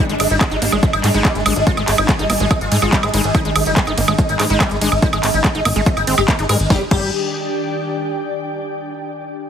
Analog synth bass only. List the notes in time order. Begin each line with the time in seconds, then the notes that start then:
0.09 G#1
0.20 G#1
0.30 G#1
0.51 G#1
0.62 G#1
0.72 G#1
0.93 G#1
1.04 G#2
1.14 G#1
1.35 G#1
1.46 G#1
1.56 G#1
1.77 G#1
1.88 G#1
1.98 G#1
2.19 G#1
2.30 G#1
2.40 G#1
2.61 G#1
2.72 G#2
2.82 G#1
3.03 G#1
3.14 G#1
3.24 G#1
3.45 G#1
3.56 G#1
3.66 G#1
3.87 G#1
3.98 G#1
4.08 G#1
4.29 G#1
4.40 G#2
4.50 G#1
4.71 G#1
4.81 G#1
4.92 G#1
5.13 G#1
5.23 G#1
5.34 G#1
5.55 G#1
5.65 G#1
5.76 G#1
5.97 G#1
6.07 G#1
6.18 G#1
6.39 G#1
6.49 G#2
6.60 G#1
6.70 G1
6.91 G1